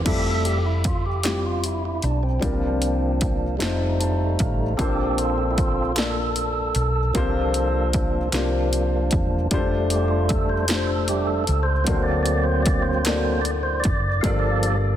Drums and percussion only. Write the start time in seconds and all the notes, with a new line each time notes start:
0.06 kick, closed hi-hat, crash
0.45 closed hi-hat
0.84 kick, closed hi-hat
1.23 snare, clap, closed hi-hat
1.64 closed hi-hat
2.02 closed hi-hat
2.42 kick, closed hi-hat
2.82 closed hi-hat
3.21 kick, closed hi-hat
3.60 snare, clap, closed hi-hat
4.01 closed hi-hat
4.39 kick, closed hi-hat
4.79 kick, closed hi-hat
5.18 closed hi-hat
5.58 kick, closed hi-hat
5.96 snare, clap, closed hi-hat
6.36 closed hi-hat
6.75 closed hi-hat
7.15 kick, closed hi-hat
7.54 closed hi-hat
7.93 kick, closed hi-hat
8.32 snare, clap, closed hi-hat
8.73 closed hi-hat
9.11 kick, closed hi-hat
9.51 kick, closed hi-hat
9.90 closed hi-hat
10.29 kick, closed hi-hat
10.68 snare, clap, closed hi-hat
11.08 closed hi-hat
11.47 closed hi-hat
11.87 kick, closed hi-hat
12.26 closed hi-hat
12.66 kick, closed hi-hat
13.05 snare, clap, closed hi-hat
13.45 closed hi-hat
13.84 kick, closed hi-hat
14.24 kick, closed hi-hat
14.63 closed hi-hat